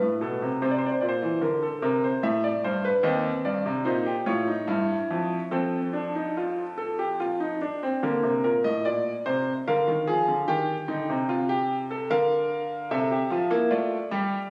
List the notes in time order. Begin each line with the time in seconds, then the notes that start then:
0.01 A2
0.21 B2 A4
0.42 C3
0.62 C3 C5
0.71 D5
0.78 C5
0.86 D5
0.92 C5
1.01 A#2 D5
1.09 C5
1.22 E3
1.41 D3 A#4
1.63 A4
1.82 C3 A#4
2.04 C5
2.23 A2 E5
2.44 D5
2.64 G2 C5
2.85 B4
3.03 D#2 C4 D#5
3.45 G2 D5
3.66 C3
3.85 A#2 D#4 C5
4.06 G4
4.26 A2 F4 C#5
4.47 D#4
4.67 G2 E4
5.11 F2
5.51 F2 C4 A4
5.93 D4
6.15 D#4
6.37 F4
6.78 A4
6.99 G4
7.20 F4
7.40 D#4
7.61 D4
7.83 C4
8.03 D3 A#3 A#4
8.23 C3
8.44 A#2 A#4
8.64 A2 D#5
8.85 A#2 D5
9.26 C3 C5
9.68 D3 A#4 F5
9.88 D#3
10.07 F3 G#4
10.28 D3
10.48 D#3 G4 G5
10.88 D3 D#4
11.10 C3
11.29 F4
11.49 G4
11.91 A4
12.10 D3 A#4 F5
12.91 C3 A4 E5
13.11 G4
13.30 F3 F4
13.50 A#3 E4
13.71 A3 F4 D5
14.11 G3 G4